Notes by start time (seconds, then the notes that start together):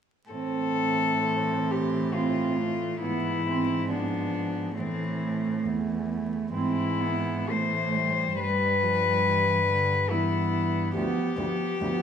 0.30 A2 E3 C4 A4
1.24 C4
1.71 G4
2.13 C4 F4
2.57 A3
3.01 G#2 E3 B3 E4
3.47 C4
3.90 F3 B3 D4
4.77 A2 E3 A3 C4
5.64 E2 E3
6.53 G#2 E3 C4 E4
7.00 B3
7.49 A2 E3 A3 C5
7.95 G3
8.39 G2 G3 B4
8.82 F3
9.26 E3
9.69 D3
10.10 E3 B3 E4
10.95 D2 F3 B3 G4
11.37 D2 F3 B3
11.81 D2 F3 B3